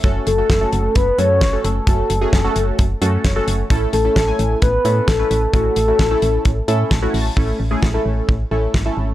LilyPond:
<<
  \new Staff \with { instrumentName = "Soft synth lead" } { \time 4/4 \key a \major \tempo 4 = 131 r8 a'4. b'8 cis''4 a'8~ | a'2~ a'8 r4. | r8 a'4. b'4 a'4 | a'2. r4 |
r1 | }
  \new Staff \with { instrumentName = "Synth keys" } { \time 4/4 \key a \major << { r1 | r2. cis''4 | r1 | r2 r8 e''8 \tuplet 3/2 { a''4 a''8 } |
r1 | } \\ { <a cis' fis' a'>8 r16 <a cis' fis' a'>16 r16 <a cis' fis' a'>8. r8 <a cis' fis' a'>8 r16 <a cis' fis' a'>8 r16 | <a cis' fis' a'>8 r16 <a cis' fis' gis'>16 r16 <a cis' fis' a'>8. r8 <a cis' fis' a'>8 r16 <a cis' fis' a'>8 r16 | <a cis' e' a'>8 r16 <a cis' e' a'>16 r16 <a cis' e' gis''>8. r8 <a cis' e' a'>8 r16 <a cis' e' b'>8 r16 | <a cis' e' fis'>8 r16 <a cis' e' fis'>16 r16 <a cis' e' a'>8. r8 <a cis' e' a'>8 r16 <a cis' e' fis'>8 r16 |
<a cis' e' a'>8 r16 <a cis' e' gis'>16 r16 <a cis' e' a'>8. r8 <a cis' e' a'>8 r16 <a cis' e' a'>8 r16 | } >> }
  \new Staff \with { instrumentName = "FM bass" } { \clef bass \time 4/4 \key a \major fis,,8 fis,,8 fis,,8 fis,,8 fis,,8 fis,8 fis,,8 fis,,8 | fis,,8 fis,,8 fis,,8 fis,,8 fis,,8 fis,8 fis,,8 fis,,8 | a,,8 a,,8 a,,8 a,,8 a,,8 a,8 a,,8 a,,8 | a,,8 a,,8 a,,8 a,,8 a,,8 a,8 a,,8 a,,8 |
a,,8 a,,8 a,,8 a,,8 a,,8 a,,8 gis,,8 gis,,8 | }
  \new DrumStaff \with { instrumentName = "Drums" } \drummode { \time 4/4 <hh bd>8 hh8 <hh bd sn>8 hh8 <hh bd>8 hh8 <hh bd sn>8 hh8 | <hh bd>8 hh8 <hh bd sn>8 hh8 <hh bd>8 hh8 <hh bd sn>8 hh8 | <hh bd>8 hh8 <hh bd sn>8 hh8 <hh bd>8 hh8 <hh bd sn>8 hh8 | <hh bd>8 hh8 <hh bd sn>8 hh8 <hh bd>8 hh8 <hh bd sn>8 hho8 |
bd4 <bd sn>4 bd4 <bd sn>4 | }
>>